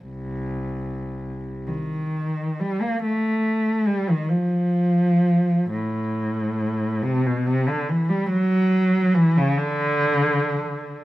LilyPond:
\new Staff \with { instrumentName = "Cello" } { \clef bass \time 6/8 \key c \dorian \tempo 4. = 46 c,4. ees4 g16 bes16 | a4 g16 ees16 f4. | a,4. c16 b,16 c16 d16 e16 g16 | fis4 e16 des16 d4. | }